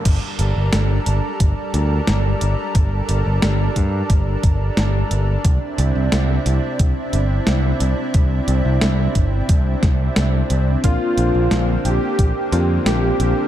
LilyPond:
<<
  \new Staff \with { instrumentName = "Supersaw synth" } { \time 4/4 \key g \dorian \tempo 4 = 89 r1 | r1 | r1 | r1 |
f'4. g'4. g'4 | }
  \new Staff \with { instrumentName = "Grand piano" } { \time 4/4 \key g \dorian r1 | r1 | r1 | r1 |
<bes c' d' f'>2~ <bes c' d' f'>8 <bes c' d' f'>4. | }
  \new Staff \with { instrumentName = "Analog synth pad" } { \time 4/4 \key g \dorian <g d' a' bes'>1~ | <g d' a' bes'>1 | <c c' e'>1~ | <c c' e'>1 |
<d bes>1 | }
  \new Staff \with { instrumentName = "Picked electric bass" } { \clef bass \time 4/4 \key g \dorian g,,16 r16 g,,16 g,,16 g,,16 r16 g,,16 r16 g,,16 r16 d,16 r16 g,,16 r16 g,,16 r16 | g,,16 r16 g,,16 g,,16 g,,16 r16 g,16 r16 g,,16 r16 g,,16 r16 g,,16 r16 g,,16 r16 | c,16 r16 c,16 c,16 c,16 r16 c,16 r16 c,16 r16 g,,16 r16 c,16 r16 c,16 r16 | c,16 r16 c,16 c,16 c,16 r16 g,,16 r16 c,16 r16 c,16 r16 c,16 r16 c,16 r16 |
bes,,16 r16 bes,,16 bes,,16 bes,,16 r16 bes,,16 r16 bes,,16 r16 f,16 r16 bes,,16 r16 bes,,16 r16 | }
  \new DrumStaff \with { instrumentName = "Drums" } \drummode { \time 4/4 <cymc hh bd>8 hh8 <hh sn>8 hh8 <hh bd>8 hh8 <hh sn>8 hh8 | <hh bd>8 hh8 <hh sn>8 <hh bd>8 <hh bd>8 <hh bd>8 <hh sn>8 hh8 | <hh bd>8 hh8 <hh sn>8 hh8 <hh bd>8 hh8 <hh sn>8 hh8 | <hh bd>8 hh8 <hh sn>8 <hh bd>8 <hh bd>8 <hh bd sn>8 <hh sn>8 hh8 |
<hh bd>8 hh8 <hh sn>8 hh8 <hh bd>8 hh8 <hh sn>8 hh8 | }
>>